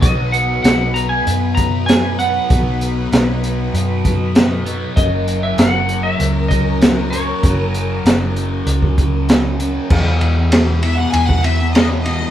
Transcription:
<<
  \new Staff \with { instrumentName = "Electric slide guitar" } { \time 4/4 \key b \major \tempo 4 = 97 dis''8 fis''8 fis''8 ais''16 gis''8. ais''8 gis''8 fis''8~ | fis''2.~ fis''8 r8 | dis''8. e''16 fis''8. e''8. dis''4 cis''8~ | cis''4. r2 r8 |
r1 | }
  \new Staff \with { instrumentName = "String section" } { \time 4/4 \key b \major <fis dis' b'>1~ | <fis dis' b'>1 | <fis cis' ais'>1~ | <fis cis' ais'>1 |
r4. e''16 fis''16 gis''16 fis''16 e''8 dis''16 cis''16 dis''8 | }
  \new Staff \with { instrumentName = "Distorted electric guitar" } { \clef bass \time 4/4 \key b \major <b, fis b>2.~ <b, fis b>8 <b, fis b>8 | <b, fis b>2.~ <b, fis b>8 <b, fis b>8 | <fis, cis fis>2.~ <fis, cis fis>8 <fis, cis fis>8 | <fis, cis fis>2.~ <fis, cis fis>8 <fis, cis fis>8 |
<e, b, e>4 <e, b, e>8 <e, b, e>16 <b, e>8 <b, e>16 <e, b, e>8 <e, b, e>8 <e, b, e>16 <b, e>16 | }
  \new Staff \with { instrumentName = "Picked electric bass" } { \clef bass \time 4/4 \key b \major b,,4 b,,4 fis,2 | b,,4 b,,4 fis,2 | fis,,4 fis,,4 cis,2 | fis,,4 fis,,4 cis,2 |
e,8 e,4. e,2 | }
  \new DrumStaff \with { instrumentName = "Drums" } \drummode { \time 4/4 <hh bd>8 hh8 <hh sn>8 hh8 hh8 <hh bd>8 <hh sn>8 hh8 | <hh bd>8 hh8 <hh sn>8 hh8 hh8 <hh bd>8 <hh sn>8 hh8 | <hh bd>8 hh8 <hh sn>8 hh8 hh8 <hh bd>8 <hh sn>8 hh8 | <hh bd>8 hh8 <hh sn>8 hh8 hh16 bd16 <hh bd>8 <hh sn>8 hh8 |
<cymc bd>8 cymr8 <cymr sn>8 cymr8 cymr16 bd16 cymr8 <cymr sn>8 cymr8 | }
>>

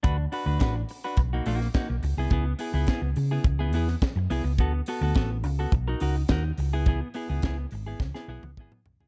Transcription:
<<
  \new Staff \with { instrumentName = "Clean electric guitar" } { \time 4/4 \key cis \dorian \tempo 4 = 105 <d' fis' b'>16 r16 <d' fis' b'>16 <d' fis' b'>16 <d' fis' b'>16 r8 <d' fis' b'>16 r16 <ais dis' fis'>16 <ais dis' fis'>16 r16 <ais dis' fis'>16 r8 <b e' gis'>16 | <b e' gis'>16 r16 <b e' gis'>16 <b e' gis'>16 <b e' gis'>16 r8 <b e' gis'>16 r16 <b e' gis'>16 <b e' gis'>16 r8. <b e' gis'>16 r16 | <b fis' a'>16 r16 <b fis' a'>16 <b fis' a'>16 <b fis' a'>16 r8 <b fis' a'>16 r16 <dis' fis' ais'>16 <dis' fis' ais'>16 r16 <dis' fis' ais'>16 r8 <b e' gis'>16 | <b e' gis'>16 r16 <b e' gis'>16 <b e' gis'>16 <b e' gis'>16 r8 <b e' gis'>16 r16 <b e' gis'>16 <b e' gis'>16 r16 <b e' gis'>16 r8 <b e' gis'>16 | }
  \new Staff \with { instrumentName = "Fingered electric bass" } { \clef bass \time 4/4 \key cis \dorian d,8 r16 d,16 a,,8 r8 b,,8 ais,,8 r16 b,,16 cis,16 bis,,16 | cis,8 r16 cis,16 r16 cis,16 cis8 cis,8 e,8 r16 fis,16 bis,,16 cis,16 | d,8 r16 d,16 a,,8 cis,8 b,,8 cis,8 dis,8 cis,8~ | cis,8 r16 cis,16 cis,8 gis,,8 cis,16 r16 b,,16 cis,16 gis,,16 r16 b,,16 bis,,16 | }
  \new DrumStaff \with { instrumentName = "Drums" } \drummode { \time 4/4 <hh bd>8 hho8 <hh bd sn>8 hho8 <hh bd>8 hho16 sn16 <hh bd sn>8 hho8 | <hh bd>8 hho8 <hh bd sn>8 hho8 <hh bd>8 hho16 sn16 <hh bd sn>8 hho8 | <hh bd>8 hho8 <hh bd sn>8 hho8 <hh bd>8 hho8 <hh bd sn>8 hho8 | <hh bd>8 hho8 <hh bd sn>8 hho8 <bd sn>16 sn8 tommh16 bd16 toml16 tomfh16 tomfh16 | }
>>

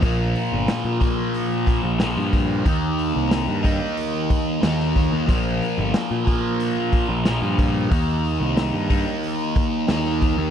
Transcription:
<<
  \new Staff \with { instrumentName = "Distorted electric guitar" } { \clef bass \time 4/4 \key ees \major \tempo 4 = 91 <bes, f bes>4. <bes, f bes>4. <bes, f bes>4 | <ees bes ees'>4. <ees bes ees'>4. <ees bes ees'>4 | <bes, f bes>4. <bes, f bes>4. <bes, f bes>4 | <ees bes ees'>4. <ees bes ees'>4. <ees bes ees'>4 | }
  \new Staff \with { instrumentName = "Picked electric bass" } { \clef bass \time 4/4 \key ees \major bes,,8 r16 g,,16 r16 bes,4. bes,,8 g,8. | ees,8. c,8 g,8 r4 r16 ees,8. ees,16 | bes,,8 r16 g,,16 r16 bes,4. bes,,8 g,8. | ees,8. c,8 g,8 r4 r16 ees,8. ees,16 | }
  \new DrumStaff \with { instrumentName = "Drums" } \drummode { \time 4/4 <hho bd>8 hho8 <hho sn>8 <hho bd>8 hho8 <hho bd>8 <hho sn>8 <hho bd>8 | <hho bd>8 hho8 <hho sn>8 <hho bd>8 hho8 <hho bd>8 <hho sn>16 sn16 <hho bd>8 | <hho bd>8 hho8 <hho sn>8 <hho bd>8 hho8 <hho bd>8 <hho sn>8 <hho bd>8 | <hho bd>8 hho8 <hho sn>8 <hho bd>8 hho8 <hho bd>8 <hho sn>16 sn16 <hho bd>8 | }
>>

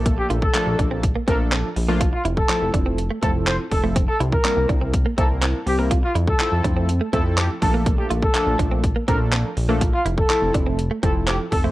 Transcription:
<<
  \new Staff \with { instrumentName = "Horn section" } { \time 4/4 \key f \major \tempo 4 = 123 r16 g'16 r16 a'8. r4 bes'16 r4 r16 | r16 f'16 r16 a'8. r4 a'16 r16 c''16 r16 a'16 r16 | r16 a'16 r16 bes'8. r4 a'16 r8. g'16 r16 | r16 f'16 r16 a'8. r4 a'16 r16 g'16 r16 a'16 r16 |
r16 g'16 r16 a'8. r4 bes'16 r4 r16 | r16 f'16 r16 a'8. r4 a'16 r16 g'16 r16 a'16 r16 | }
  \new Staff \with { instrumentName = "Clean electric guitar" } { \time 4/4 \key f \major bes16 r16 f'16 r8. d'16 c'16 r16 bes16 c'16 r16 c'16 r8 bes16 | f'16 r16 e'16 r8. d'16 c'16 r16 a16 c'16 r16 c'16 r8 a16 | c'16 r16 e'16 r8. d'16 c'16 r16 bes16 c'16 r16 c'16 r8 bes16 | f'16 r16 e'16 r8. d'16 c'16 r16 a16 c'16 r16 c'16 r8 bes16 |
bes16 r16 f'16 r8. d'16 c'16 r16 bes16 c'16 r16 c'16 r8 bes16 | f'16 r16 e'16 r8. d'16 c'16 r16 a16 c'16 r16 c'16 r8 a16 | }
  \new Staff \with { instrumentName = "Synth keys" } { \time 4/4 \key f \major <f a bes d' a'>8. r16 <f a bes d' a'>4 r8 <f a bes d' a'>8. r8 <f a bes d' f'>16 | r4 <f a c' e' a'>4 r8 <f a c' e' a'>8. r8 <f a c' e' a'>16 | r4 <g bes c' e' bes'>4 r8 <g bes c' e' bes'>8. r8 <g bes c' e' bes'>16 | r4 <f a c' e' a'>4 r8 <f a c' e' a'>8. r16 <f a bes d' a'>8~ |
<f a bes d' a'>8. r16 <f a bes d' a'>4 r8 <f a bes d' a'>8. r8 <f a bes d' a'>16 | r4 <f a c' e' a'>4 r8 <f a c' e' a'>8. r8 <f a c' e' c''>16 | }
  \new Staff \with { instrumentName = "Analog synth bass" } { \clef bass \time 4/4 \key f \major bes,,8 bes,,8 r16 bes,,16 bes,,4 bes,,4 bes,,8~ | bes,,8 f,,8 r16 f,,16 f,,4 f,,4 f,,8~ | f,,8 c,8 r16 c,16 c,4 c,4 c,8~ | c,8 f,8 r16 f,16 f,4 f,4 bes,,8~ |
bes,,8 bes,,8 r16 bes,,16 bes,,4 bes,,4 bes,,8~ | bes,,8 f,,8 r16 f,,16 f,,4 f,,4 f,,8 | }
  \new DrumStaff \with { instrumentName = "Drums" } \drummode { \time 4/4 <hh bd>8 hh16 bd16 <hc hh>8 <hh bd>8 <hh bd>8 <hh bd>8 <hc hh>8 hho8 | <hh bd>8 hh16 bd16 <hc hh>8 <hh bd>8 hh8 <hh bd>8 <hc hh>8 <hho bd>8 | <hh bd>8 hh16 bd16 <hc hh>8 <hh bd>8 <hh bd>8 <hh bd>8 <hc hh>8 hho8 | <hh bd>8 hh16 bd16 <hc hh>8 <hh bd>8 hh8 <hh bd>8 <hc hh>8 <hho bd>8 |
<hh bd>8 hh16 bd16 <hc hh>8 <hh bd>8 <hh bd>8 <hh bd>8 <hc hh>8 hho8 | <hh bd>8 hh16 bd16 <hc hh>8 <hh bd>8 hh8 <hh bd>8 <hc hh>8 <hho bd>8 | }
>>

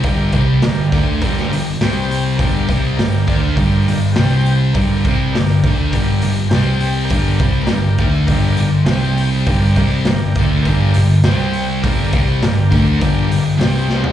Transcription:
<<
  \new Staff \with { instrumentName = "Transistor combo organ" } { \time 4/4 \key g \minor \tempo 4 = 102 <bes' d'' g''>8. r16 <bes' d'' g''>8. r16 <bes' d'' g''>8. r16 <g' c'' g''>8. r16 | <bes' d'' g''>8. r16 <bes' d'' g''>8. r16 <bes' d'' g''>8. r16 <g' c'' g''>8. r16 | <bes' d'' g''>8. r16 <bes' d'' g''>8. r16 <bes' d'' g''>8. r16 <g' c'' g''>8. r16 | <bes' d'' g''>8. r16 <bes' d'' g''>8. r16 <bes' d'' g''>8. r16 <g' c'' g''>8. r16 |
<bes' d'' g''>8. r16 <bes' d'' g''>8. r16 <bes' d'' g''>8. r16 <g' c'' g''>8. r16 | <bes' d'' g''>8. r16 <bes' d'' g''>8. r16 <bes' d'' g''>8. r16 <g' c'' g''>8. r16 | }
  \new Staff \with { instrumentName = "Distorted electric guitar" } { \clef bass \time 4/4 \key g \minor <g, d g>8 <c g c'>8 <g, d>8 <d a d'>8 <g, d g>8 <g, d>8 <c g c'>4 | <g, d g>8 <c g c'>8 <g, d>8 <d a d'>8 <g, d g>8 <g, d>8 <c g c'>4 | <g, d g>8 <c g c'>8 <g, d>8 <d a d'>8 <g, d g>8 <g, d>8 <c g c'>4 | <g, d g>8 <c g c'>8 <g, d>8 <d a d'>8 <g, d g>8 <g, d>8 <c g c'>4 |
<g, d g>8 <c g c'>8 <g, d>8 <d a d'>8 <g, d g>8 <g, d>8 <c g c'>4 | <g, d g>8 <c g c'>8 <g, d>8 <d a d'>8 <g, d g>8 <g, d>8 <c g c'>4 | }
  \new Staff \with { instrumentName = "Picked electric bass" } { \clef bass \time 4/4 \key g \minor g,,8 c,8 g,,8 d,8 g,,8 g,,8 c,4 | g,,8 c,8 g,,8 d,8 g,,8 g,,8 c,4 | g,,8 c,8 g,,8 d,8 g,,8 g,,8 c,4 | g,,8 c,8 g,,8 d,8 g,,8 g,,8 c,4 |
g,,8 c,8 g,,8 d,8 g,,8 g,,8 c,4 | g,,8 c,8 g,,8 d,8 g,,8 g,,8 c,4 | }
  \new DrumStaff \with { instrumentName = "Drums" } \drummode { \time 4/4 <hho bd>8 <hho bd>8 <hho sn>8 <hho bd>8 <hho bd>16 sn16 hho8 <hho sn>8 hho8 | <hho bd>8 <hho bd>8 <hho sn>8 <hho bd>8 <hho bd>8 hho8 <hho sn>8 hho8 | <hho bd>8 <hho bd>8 <hho sn>8 <hho bd>8 <hho bd>8 hho8 <hho sn>8 hho8 | <hho bd>8 <hho bd>8 <hho sn>8 <hho bd>8 <hho bd>8 hho8 <hho sn>8 hho8 |
<hho bd>8 <hho bd>8 <hho sn>8 <hho bd>8 <hho bd>8 hho8 <hho sn>8 hho8 | <hho bd>8 <hho bd>8 <hho sn>8 <hho bd>8 <hho bd>8 hho8 <hho sn>8 sn16 tomfh16 | }
>>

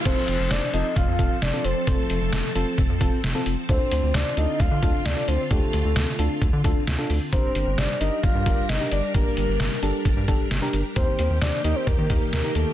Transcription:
<<
  \new Staff \with { instrumentName = "Soft synth lead" } { \time 4/4 \key f \mixolydian \tempo 4 = 132 c''4 d''8 ees''8 f''4 d''8 c''8 | a'2 r2 | c''4 d''8 ees''8 f''4 d''8 c''8 | a'2 r2 |
c''4 d''8 ees''8 f''4 ees''8 d''8 | bes'2 r2 | c''4 d''8 ees''16 c''16 bes'4 bes'8 a'8 | }
  \new Staff \with { instrumentName = "FM electric piano" } { \time 4/4 \key f \mixolydian <c' f' a'>8. r8. <c' f' a'>8 r8 <c' f' a'>8 r16 <c' f' a'>8 r16 | <c' f' c''>8. r8. <c' f' a'>8 r8 <c' f' a'>8 r16 <c' f' a'>8 r16 | <d' f' a'>8. r8. <d' f' a'>8 r8 <d' f' a'>8 r16 <d' f' a'>8 r16 | <d' f' g'>8. r8. <d' f' a'>8 r8 <d' f' a'>8 r16 <d' f' a'>8 r16 |
<d' g' bes'>8. r8. <d' g' bes'>8 r8 <d' g' bes'>8 r16 <d' g' bes'>8 r16 | <d' g' bes'>8. r8. <d' g' a'>8 r8 <d' g' a'>8 r16 <d' g' bes'>8 r16 | <ees' g' bes'>8. r8. <ees' g' bes'>8 r8 <ees' g' bes'>8 r16 <ees' g' bes'>8 r16 | }
  \new Staff \with { instrumentName = "String machine" } { \time 4/4 \key f \mixolydian << { <f a'>1~ | <f a'>1 | <d f'>1~ | <d f'>1 |
<g bes'>1~ | <g bes'>1 | <ees g'>1 | } \\ { c'1~ | c'1~ | c'1~ | c'1 |
d'1~ | d'1 | bes1 | } >> }
  \new Staff \with { instrumentName = "Analog synth bass" } { \clef bass \time 4/4 \key f \mixolydian f,,16 r16 f,,16 f,,16 f,,16 r16 f,,16 r16 f,,16 f,16 f,,16 r16 f,,16 r16 f,,16 r16 | f,,16 r16 f,,16 f,,16 f,,16 r16 f,,16 r16 f,,16 f,16 f,,16 r16 f,,16 r16 f,,16 r16 | d,16 r16 d,16 d,16 d,16 r16 d,16 r16 d,16 d16 d,16 r16 d,16 r16 d,16 r16 | d,16 r16 d,16 d,16 d,16 r16 d,16 r16 d,16 d16 d,16 r16 d,16 r16 d,16 r16 |
g,,16 r16 g,,16 g,,16 g,,16 r16 g,,16 r16 g,,16 g,16 g,,16 r16 g,,16 r16 g,,16 r16 | g,,16 r16 g,,16 g,,16 g,,16 r16 g,,16 r16 g,,16 g,16 g,,16 r16 g,,16 r16 g,,16 r16 | ees,16 r16 ees,16 ees,16 ees,16 r16 ees,16 r16 ees,16 ees16 ees,16 r16 ees,16 r16 ees,16 r16 | }
  \new DrumStaff \with { instrumentName = "Drums" } \drummode { \time 4/4 <cymc hh bd>8 hh8 <hh sn>8 hh8 <hh bd>8 <hh bd>8 <hh sn>8 hh8 | <hh bd>8 hh8 <hh sn>8 hh8 <hh bd>8 <hh bd>8 <hh sn>8 hh8 | <hh bd>8 hh8 <hh sn>8 hh8 <hh bd>8 <hh bd>8 <hh sn>8 hh8 | <hh bd>8 hh8 <hh sn>8 hh8 <hh bd>8 <hh bd>8 <hh sn>8 hho8 |
<hh bd>8 hh8 <hh sn>8 hh8 <hh bd>8 <hh bd>8 <hh sn>8 hh8 | <hh bd>8 hh8 <hh sn>8 hh8 <hh bd>8 <hh bd>8 <hh sn>8 hh8 | <hh bd>8 hh8 <hh sn>8 hh8 <hh bd>8 <hh bd>8 <hh sn>8 hh8 | }
>>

